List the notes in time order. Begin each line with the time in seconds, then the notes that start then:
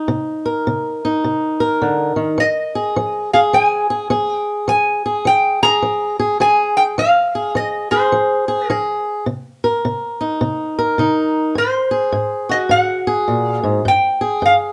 Already playing: D#4
0.08 C3
0.46 A#4
0.67 C3
1.05 D#4
1.24 C3
1.60 A#4
1.82 D3
2.16 D#3
2.38 F3 D#5
2.75 G#4
2.96 F3
3.33 G#4 F5
3.53 F3 G#5
3.90 G#4
4.10 F3 G#4
4.32 G5
4.68 F3 G#5
5.06 G#4
5.25 F3 G5
5.63 G#4 A#5
5.82 F3
6.19 G#4
6.40 F3 G#4 G#5
6.77 G5
6.98 F3 F5
7.35 G#4
7.55 F3 D#5
7.91 G#4 C5
8.12 F3
8.48 G#4
8.67 F3 G#4 A#4
9.26 C3
9.64 A#4
9.85 C3
10.21 D#4
10.41 C3
10.79 A#4
10.98 C3 D#4
11.55 G#2 C5
11.91 G#4
12.12 G#2
12.49 F#4 D#5
12.69 G#2 F#5
13.07 G#4
13.28 A#2
13.49 F5
13.63 G#2
13.85 G2 G5
14.21 G#4
14.42 G2 F5